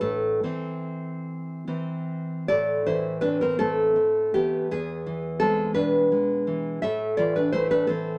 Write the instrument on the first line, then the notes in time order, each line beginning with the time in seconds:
nylon-string guitar
0.01 A2 A4
0.43 E3 C4
1.67 E3 C4
2.48 A2 A4 D5
2.86 E3 E4 C5
3.21 C4 D4 B4
3.41 C4 A#4
3.59 A3 C4 A4
3.96 C4
4.34 E3 B3 G4
4.71 E2 B3 G#4
5.06 E3
5.40 G#3 C4 A4
5.74 B2 D4 B4
6.12 G#3
6.47 E3
6.82 A2 A4 E5
7.17 E3 F4 D5
7.36 D4 B4
7.52 A3 E4 C5
7.71 D4 B4
7.87 E3 C4 A4